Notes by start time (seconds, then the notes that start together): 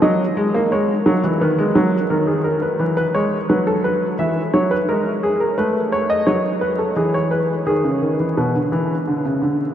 0.02 F#3 D#5
0.37 G#3
0.54 A#3
0.72 G#3 C#5
1.06 F#3
1.24 E3
1.41 D#3 B4
1.58 G#3
1.75 F#3
2.10 D#3 A#4
2.27 G#4
2.44 A#4
2.62 B4
2.79 E3 B4
2.97 B4
3.14 G#3 C#5
3.49 F#3 B4
3.67 A4
3.84 B4
4.19 E3 E5
4.53 F#3 C#5
4.71 B4
4.89 G#3 A#4
5.23 G#4
5.40 A#4
5.58 A3 B4
5.92 C#5
6.10 D#5
6.26 F#3 C#5
6.61 B4
6.78 A4
6.96 E3 G#4
7.14 C#5
7.31 B4
7.67 D#3 G#4
7.84 C#3
8.02 D#3
8.20 E3
8.37 B2 B4
8.55 D3
8.72 E3
9.08 D3
9.25 C#3
9.42 D3